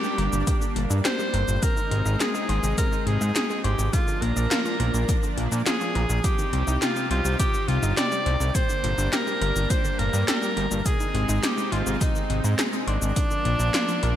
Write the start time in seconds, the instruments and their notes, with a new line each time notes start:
Already playing: analog synth pad G3 A#3 D4, tenor saxophone G4
0.04 synth arpeggio sound G3, shaker
0.18 analog synth bass G1, synth arpeggio sound A#4, closed hi-hat
0.32 analog synth bass G1, synth arpeggio sound A#2, shaker
0.47 synth arpeggio sound A#2, kick, closed hi-hat, shaker
0.61 synth arpeggio sound D3, shaker
0.76 analog synth bass G1, synth arpeggio sound A#2, closed hi-hat
0.90 analog synth bass G2, synth arpeggio sound D4, shaker
1.05 synth arpeggio sound G4, tenor saxophone C5, snare, clap, closed hi-hat, shaker
1.19 synth arpeggio sound G3, shaker
1.34 analog synth bass G1, synth arpeggio sound A#4, closed hi-hat
1.48 analog synth bass G1, synth arpeggio sound A#2, shaker
1.62 synth arpeggio sound C3, analog synth pad G#3 C4 D#4, tenor saxophone A#4, kick, closed hi-hat, shaker
1.77 synth arpeggio sound D#3, shaker
1.91 analog synth bass G#1, synth arpeggio sound C3, closed hi-hat
2.06 analog synth bass G#1, synth arpeggio sound D#4, shaker
2.20 synth arpeggio sound G#4, tenor saxophone G#4, snare, clap, closed hi-hat, shaker
2.34 synth arpeggio sound G#3, shaker
2.49 analog synth bass G#1, synth arpeggio sound C5, closed hi-hat
2.63 analog synth bass G#1, synth arpeggio sound C3, shaker
2.78 synth arpeggio sound C3, tenor saxophone A#4, kick, closed hi-hat, shaker
2.92 synth arpeggio sound D#3, shaker
3.07 analog synth bass G#1, synth arpeggio sound C3, tenor saxophone G#4, closed hi-hat
3.21 analog synth bass G#2, synth arpeggio sound D#4, shaker
3.35 synth arpeggio sound G#4, snare, clap, closed hi-hat, shaker
3.50 synth arpeggio sound G#3, shaker
3.64 analog synth bass G#1, tenor saxophone G4, synth arpeggio sound C5, closed hi-hat
3.79 analog synth bass G#1, synth arpeggio sound C3, shaker
3.93 synth arpeggio sound A#2, analog synth pad F3 A#3 D4, tenor saxophone F4, kick, closed hi-hat, shaker
4.08 synth arpeggio sound D3, shaker
4.22 analog synth bass A#1, synth arpeggio sound A#2, tenor saxophone A#4, closed hi-hat
4.36 analog synth bass A#1, synth arpeggio sound D4, shaker
4.51 synth arpeggio sound F4, snare, clap, closed hi-hat, shaker
4.65 synth arpeggio sound F3, shaker
4.80 analog synth bass A#1, synth arpeggio sound A#4, closed hi-hat
4.94 analog synth bass A#1, synth arpeggio sound A#2, shaker
5.09 synth arpeggio sound A#2, kick, closed hi-hat, shaker
5.23 synth arpeggio sound D3, shaker
5.37 analog synth bass A#1, synth arpeggio sound A#2, closed hi-hat
5.52 analog synth bass A#2, synth arpeggio sound D4, shaker
5.66 synth arpeggio sound F4, tenor saxophone G#4, snare, clap, closed hi-hat, shaker
5.81 synth arpeggio sound F3, shaker
5.95 analog synth bass A#1, synth arpeggio sound A#4, closed hi-hat
6.10 analog synth bass A#1, synth arpeggio sound A#2, shaker
6.24 analog synth pad C3 C4 D#4 G4, synth arpeggio sound C3, tenor saxophone G4, kick, closed hi-hat, shaker
6.39 synth arpeggio sound D#3, shaker
6.53 analog synth bass C2, synth arpeggio sound C3, closed hi-hat
6.67 analog synth bass C2, synth arpeggio sound D#4, shaker
6.82 tenor saxophone F4, synth arpeggio sound G4, snare, clap, closed hi-hat, shaker
6.96 synth arpeggio sound G3, shaker
7.11 analog synth bass C2, tenor saxophone F4, synth arpeggio sound C5, closed hi-hat
7.25 analog synth bass C2, synth arpeggio sound C3, shaker
7.39 synth arpeggio sound C3, tenor saxophone G4, kick, closed hi-hat, shaker
7.54 synth arpeggio sound D#3, shaker
7.68 analog synth bass C2, synth arpeggio sound C3, tenor saxophone F4, closed hi-hat
7.83 analog synth bass G1, synth arpeggio sound D#4, shaker
7.97 synth arpeggio sound G4, tenor saxophone D5, snare, clap, closed hi-hat, shaker
8.12 synth arpeggio sound G3, shaker
8.26 analog synth bass C2, synth arpeggio sound C5, closed hi-hat
8.40 analog synth bass C2, synth arpeggio sound C3, shaker
8.55 synth arpeggio sound A#2, analog synth pad G3 A#3 D4, tenor saxophone C5, kick, closed hi-hat, shaker
8.69 synth arpeggio sound D3, shaker
8.84 analog synth bass G1, synth arpeggio sound A#2, closed hi-hat
8.98 analog synth bass G1, synth arpeggio sound D4, shaker
9.12 synth arpeggio sound G4, tenor saxophone A#4, snare, clap, closed hi-hat, shaker
9.27 synth arpeggio sound G3, shaker
9.41 analog synth bass G1, synth arpeggio sound A#4, closed hi-hat
9.56 analog synth bass G1, synth arpeggio sound A#2, shaker
9.70 synth arpeggio sound A#2, tenor saxophone C5, kick, closed hi-hat, shaker
9.85 synth arpeggio sound D3, shaker
9.99 analog synth bass G1, synth arpeggio sound A#2, tenor saxophone A#4, closed hi-hat
10.13 analog synth bass G2, synth arpeggio sound D4, shaker
10.28 synth arpeggio sound G4, tenor saxophone A#4, snare, clap, closed hi-hat, shaker
10.42 synth arpeggio sound G3, shaker
10.57 analog synth bass G1, synth arpeggio sound A#4, closed hi-hat
10.71 analog synth bass G1, synth arpeggio sound A#2, shaker
10.85 synth arpeggio sound C3, analog synth pad G#3 C4 D#4, tenor saxophone G#4, kick, closed hi-hat, shaker
11.00 synth arpeggio sound D#3, shaker
11.14 analog synth bass G#1, synth arpeggio sound C3, closed hi-hat
11.29 analog synth bass G#1, synth arpeggio sound D#4, shaker
11.43 tenor saxophone G4, synth arpeggio sound G#4, snare, clap, closed hi-hat, shaker
11.58 synth arpeggio sound G#3, shaker
11.72 analog synth bass G#1, tenor saxophone F4, synth arpeggio sound C5, closed hi-hat
11.86 analog synth bass G#1, synth arpeggio sound C3, shaker
12.01 synth arpeggio sound C3, tenor saxophone D#4, kick, closed hi-hat, shaker
12.15 synth arpeggio sound D#3, shaker
12.30 analog synth bass G#1, synth arpeggio sound C3, closed hi-hat
12.44 analog synth bass G#2, synth arpeggio sound D#4, shaker
12.59 synth arpeggio sound G#4, snare, clap, closed hi-hat, shaker
12.73 synth arpeggio sound G#3, shaker
12.87 analog synth bass G#1, tenor saxophone D4, synth arpeggio sound C5, closed hi-hat
13.02 analog synth bass G#1, synth arpeggio sound C3, shaker
13.16 synth arpeggio sound A#2, analog synth pad F3 A#3 D4, kick, closed hi-hat, shaker
13.31 synth arpeggio sound D3, shaker
13.45 analog synth bass A#1, synth arpeggio sound A#2, closed hi-hat
13.60 analog synth bass A#1, synth arpeggio sound D4, shaker
13.74 synth arpeggio sound F4, snare, clap, closed hi-hat, shaker
13.88 synth arpeggio sound F3, shaker
14.03 analog synth bass A#1, synth arpeggio sound A#4, closed hi-hat